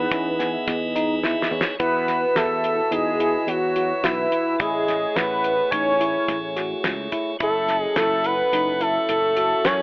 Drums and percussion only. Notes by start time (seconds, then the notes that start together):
0.11 kick, snare, closed hi-hat
0.40 snare, closed hi-hat, shaker
0.68 kick, snare, closed hi-hat
0.96 closed hi-hat
1.23 snare, shaker
1.42 snare
1.52 shaker
1.61 snare
1.80 kick, closed hi-hat
2.08 snare, closed hi-hat
2.36 snare, closed hi-hat
2.64 closed hi-hat
2.92 closed hi-hat
3.20 closed hi-hat
3.48 closed hi-hat
3.76 closed hi-hat
4.04 snare, closed hi-hat
4.32 closed hi-hat
4.60 kick, closed hi-hat
4.88 snare, closed hi-hat
5.16 snare, closed hi-hat
5.44 closed hi-hat
5.72 kick, closed hi-hat
6.01 closed hi-hat
6.28 kick, snare, closed hi-hat
6.57 snare, closed hi-hat
6.84 snare, closed hi-hat
7.12 kick, closed hi-hat
7.40 kick, closed hi-hat
7.68 snare, closed hi-hat
7.96 snare, closed hi-hat
8.24 closed hi-hat
8.53 closed hi-hat
8.81 closed hi-hat
9.09 closed hi-hat
9.37 closed hi-hat
9.65 snare, closed hi-hat